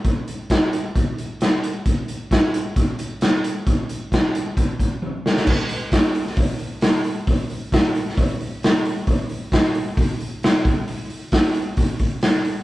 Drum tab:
CC |----------------|----------------|----------------|x---------------|
HH |x-x-x-x-x-x-x-x-|x-x-x-x-x-x-x-x-|x-x-x-x-x-x-----|--o-o-o-o-o-o-o-|
SD |----o-------o---|----o-------o---|----o---------oo|----o--o----o---|
T1 |----------------|----------------|------------o---|----------------|
BD |o---o---o-------|o---o---o-------|o---o---o-o-----|o---o---o-------|

CC |----------------|----------------|----------------|
HH |o-o-o-o-o-o-o-o-|o-o-o-o-o-o-o-o-|o-o-o-o-o-o-o-o-|
SD |----o--o----o---|----o-------o---|----o-------o---|
T1 |----------------|----------------|----------------|
BD |o---o---o-------|o---o---o-----o-|----o---o-o-----|